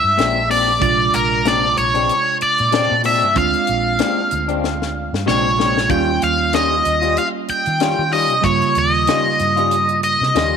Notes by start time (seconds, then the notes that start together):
Already playing: G#3 C4 D4 F4 E5
0.04 G2
0.17 A#1 A#2 G#3 C4 D4, snare, closed hi-hat
0.49 A#2 G#3 C4 D4 D5, open hi-hat
0.79 A#1 C3 G#3 D4 F4 D5, kick, closed hi-hat
1.14 A#1 A#4, closed hi-hat
1.45 A#2 G#3 C4 D4 D5, snare, closed hi-hat
1.77 A#1 C#5, closed hi-hat
1.94 G#3 C4 D4, closed hi-hat
2.09 closed hi-hat
2.41 D5, muted fingered electric bass stroke, closed hi-hat
2.58 A#2, closed hi-hat
2.72 A#2 G#3 C4 D4, snare, closed hi-hat
2.91 A#2
3.03 A#2 G#3 C4 D4 E5, open hi-hat
3.22 G2, closed hi-hat
3.34 D2 G#3 C4 D4 F4 F5, kick, closed hi-hat
3.54 closed hi-hat
3.67 A#1, closed hi-hat
3.99 A#2 G#3 C4 D4, snare, closed hi-hat
4.31 D2, closed hi-hat
4.48 G#3 C4 D4, closed hi-hat
4.64 snare
4.82 snare
5.13 G2, snare
5.26 A#1 A#2 C3 G#3 C4 D4 F4 C#5, snare
5.57 A#2 G#3 C4 D4, snare
5.78 snare
5.89 D#2 D#3 G3 A#3 C#4 F4 G5, kick, closed hi-hat
6.22 D#2 F5, closed hi-hat
6.53 D#3 G3 C#4 F4 D#5, snare, closed hi-hat
6.85 D#2, closed hi-hat
7.02 G3 C#4 F4, closed hi-hat
7.17 F5, closed hi-hat
7.48 G5, muted fingered electric bass stroke, closed hi-hat
7.66 D#3, closed hi-hat
7.80 D#3 G3 C#4 F4, snare, closed hi-hat
7.99 D#3
8.12 D#3 G3 C#4 F4 D#5, open hi-hat
8.30 C3, closed hi-hat
8.42 G2 C#3 G3 A#3 F4 C#5, kick, closed hi-hat
8.62 closed hi-hat
8.75 D#2 D#5, closed hi-hat
9.07 D#3 G3 C#4 F4, snare, closed hi-hat
9.39 G2, closed hi-hat
9.56 G3 C#4 F4, closed hi-hat
9.71 closed hi-hat
9.89 closed hi-hat
10.03 D#5, closed hi-hat
10.21 C3, snare
10.35 D#2 D#3 G3 C#4 F4, snare, closed hi-hat